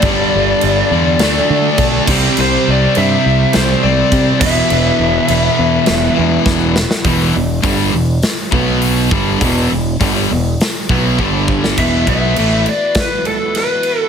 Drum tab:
CC |x---x---x---x-x-|x---x---x---x-x-|x---x---x-------|----------------|
HH |----------------|----------------|----------------|o---o---o---o---|
SD |--------o-----o-|--------o-----o-|--------o---o-oo|--------o-------|
BD |o-----------o-o-|------------o-o-|------------o---|o---o-----o---o-|

CC |----------------|x-x-x-x-x-x-x-x-|
HH |o---o---o-------|----------------|
SD |--------o------o|--------o---o---|
BD |o---o-----o-o-o-|o-o-----o-------|